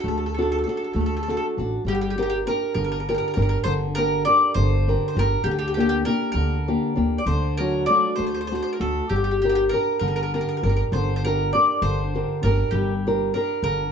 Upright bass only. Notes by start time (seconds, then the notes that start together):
0.04 D2
0.95 D2
1.57 A1
1.85 G1
2.75 G1
3.37 G1
3.65 G1
4.55 G1
5.16 G1
5.44 D2
6.34 D2
6.97 D2
7.26 D2
8.19 D2
8.80 D2
9.11 G1
10.01 G1
10.63 G1
10.92 G1
11.82 G1
12.43 G1
12.72 G1
13.63 G1